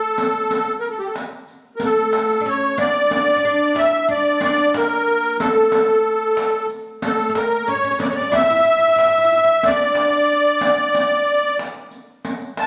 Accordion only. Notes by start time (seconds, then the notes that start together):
Already playing: A4
0.80 A#4
0.90 A4
0.99 G4
1.06 A4
1.76 A#4
1.85 A4
2.49 C#5
2.80 D5
3.78 E5
4.11 D5
4.44 D5
4.77 A#4
5.40 A4
7.05 A4
7.37 A#4
7.68 C#5
8.01 D5
8.09 C#5
8.16 D5
8.35 E5
9.67 D5
12.59 A5